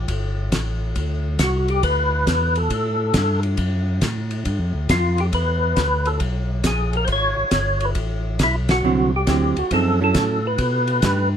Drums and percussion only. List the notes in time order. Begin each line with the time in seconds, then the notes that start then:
0.08 kick, ride
0.52 kick, snare, hi-hat pedal, ride
0.96 kick, ride
1.39 kick, snare, hi-hat pedal, ride
1.68 ride
1.83 kick, ride
2.27 kick, snare, hi-hat pedal, ride
2.55 ride
2.70 kick, ride
3.14 kick, snare, hi-hat pedal, ride
3.43 ride
3.57 kick, ride
4.01 kick, snare, hi-hat pedal, ride
4.31 ride
4.45 kick, ride
4.89 kick, snare, hi-hat pedal, ride
5.18 ride
5.33 kick, ride
5.76 kick, snare, hi-hat pedal, ride
6.05 ride
6.20 kick, ride
6.64 kick, snare, hi-hat pedal, ride
6.93 ride
7.08 kick, ride
7.51 kick, snare, hi-hat pedal, ride
7.80 ride
7.95 kick, ride
8.39 kick, snare, hi-hat pedal, ride
8.69 snare, ride
9.27 kick, snare, hi-hat pedal, ride
9.57 ride
9.71 kick, ride
10.14 kick, snare, hi-hat pedal, ride
10.58 kick, ride
10.87 ride
11.02 kick, snare, hi-hat pedal, ride